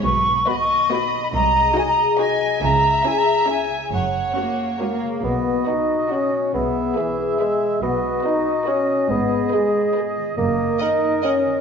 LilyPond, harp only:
\new Staff \with { instrumentName = "Harp" } { \time 3/4 \key b \major \tempo 4 = 140 <b, b dis' b'>8 b8 fis'8 b'8 dis'8 fis8 | bis,8 gis8 fis'8 gis'8 dis'8 fis8 | cis8 cis'8 gis'8 cis''8 e'8 gis8 | fis,8 ais4 ais'4 cis8 |
b,8 b4 fis'8 b8 fis8 | b,8 b8 e'8 gis'8 b8 gis8 | r2 b8 fis8 | gis,8 b8 dis'8 gis'8 b8 dis8 |
fis,4 dis'8 ais'8 fis8 dis8 | }